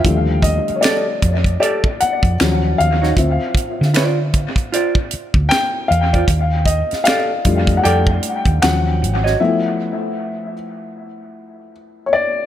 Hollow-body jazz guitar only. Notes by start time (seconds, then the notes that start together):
0.82 G4 A4 D5
1.60 G4 A4 D5
3.02 D#4 F#4 C#5
3.94 F4 C5 D5
4.72 F4 C5 D5
6.13 F4 C5 D5
7.06 G4 A4 D5
7.83 G4 A4 D5
9.24 F#4 C#5 D#5